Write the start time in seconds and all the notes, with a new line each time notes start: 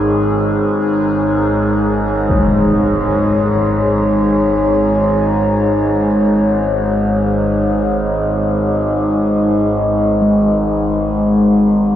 Already playing: G#1 G#2 G#3 D#4 G#4 A#4 C#5
2.30 impact
10.22 G#3